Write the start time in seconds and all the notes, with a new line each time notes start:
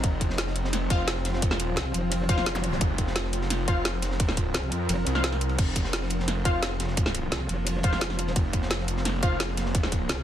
Already playing: F3 C4
0.03 F1 F4, kick, closed hi-hat, ride
0.21 kick, closed hi-hat, ride
0.30 snare
0.38 snare, closed hi-hat, ride
0.47 snare
0.56 closed hi-hat, ride
0.64 snare
0.73 snare, closed hi-hat, ride
0.90 F1 F4 C5 F5, kick, closed hi-hat, ride
1.08 snare, closed hi-hat, ride
1.16 snare
1.25 snare, closed hi-hat, ride
1.33 snare
1.42 kick, closed hi-hat, ride
1.50 E1, snare
1.60 closed hi-hat, ride
1.76 C2, snare, closed hi-hat, ride
1.85 ride
1.94 F1, closed hi-hat, ride
2.12 closed hi-hat, ride
2.29 F4 C5 F5, kick, closed hi-hat, ride
2.37 snare
2.46 F1, snare, closed hi-hat, ride
2.55 snare, zap
2.64 closed hi-hat, ride
2.72 snare
2.81 F1 A#4, kick, closed hi-hat, ride
2.98 kick, closed hi-hat, ride
3.07 snare
3.16 snare, closed hi-hat, ride
3.24 snare
3.33 closed hi-hat, ride
3.42 snare
3.50 snare, closed hi-hat, ride
3.68 F1 F4 C5 F5, kick, closed hi-hat, ride
3.85 snare, closed hi-hat, ride
3.93 snare
4.02 snare, closed hi-hat, ride
4.11 snare
4.20 kick, closed hi-hat, ride
4.28 snare
4.37 kick, closed hi-hat, ride
4.54 C2, snare, closed hi-hat, ride
4.63 ride
4.71 F2, closed hi-hat, ride
4.89 F1, closed hi-hat, ride
5.06 C2, closed hi-hat, ride
5.15 F4 C5 F5, snare
5.24 snare, closed hi-hat
5.32 snare, ride
5.41 closed hi-hat
5.49 ride
5.58 F1 A#3 F4, kick, closed hi-hat, crash, ride
5.76 kick, closed hi-hat, ride
5.84 snare
5.93 snare, closed hi-hat, ride
6.03 snare
6.10 closed hi-hat, ride
6.20 snare
6.28 snare, closed hi-hat, ride
6.45 F1 F4 C5 F5, kick, closed hi-hat, ride
6.63 snare, closed hi-hat, ride
6.71 snare
6.80 snare, closed hi-hat, ride
6.88 snare
6.97 kick, closed hi-hat, ride
7.06 snare
7.15 closed hi-hat, ride
7.32 C2, snare, closed hi-hat, ride
7.40 ride
7.49 F1, closed hi-hat, ride
7.67 closed hi-hat, ride
7.83 F4 C5 F5, kick, closed hi-hat, ride
7.93 snare
8.01 F1, snare, closed hi-hat, ride
8.10 snare
8.19 closed hi-hat, ride
8.27 snare
8.36 F1 G#4, kick, closed hi-hat, ride
8.53 kick, closed hi-hat, ride
8.62 snare
8.70 snare, closed hi-hat, ride
8.79 snare
8.88 closed hi-hat, ride
8.97 snare
9.05 snare, closed hi-hat, ride
9.23 F1 F4 C5 F5, kick, closed hi-hat, ride
9.40 snare, closed hi-hat, ride
9.48 snare
9.57 snare, closed hi-hat, ride
9.66 snare
9.75 kick, closed hi-hat, ride
9.83 snare
9.92 kick, closed hi-hat, ride
10.09 C2, snare, closed hi-hat, ride
10.17 ride